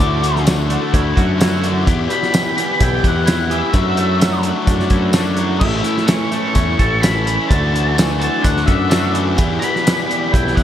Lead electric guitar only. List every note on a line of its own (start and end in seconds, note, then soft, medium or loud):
0.00 0.41 D5 medium
2.11 2.83 B5 loud
2.82 3.06 G5 medium
3.07 3.54 F#5 loud
3.51 4.41 E5 medium
5.60 6.09 E5 medium
6.07 6.53 C#6 loud
6.54 6.99 C#6 loud
7.02 7.46 B5 loud
7.48 7.93 A5 medium
8.20 8.45 A5 loud
8.42 8.66 F#5 medium
8.66 9.11 E5 medium
9.60 10.34 B5 loud
10.32 10.56 G5 loud
10.56 10.63 F#5 loud